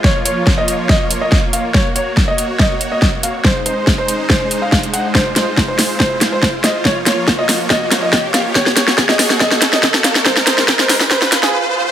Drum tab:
HH |--x---x---x---x-|--x---x---x---x-|--x---x---x--xx-|--x---o---x---x-|
SD |o---o---o---o---|o---o---o---o---|o---o---o---o---|o-o-o-o-o-o-o-o-|
BD |o---o---o---o---|o---o---o---o---|o---o---o---o---|o---o---o---o---|

HH |--x---o---x---x-|--x---o---x---x-|--x---o---x-----|
SD |o-o-o-o-o-o-o-o-|oooooooooooooooo|oooooooooooo----|
BD |o---o---o---o---|o---o---o---o---|o---o---o-------|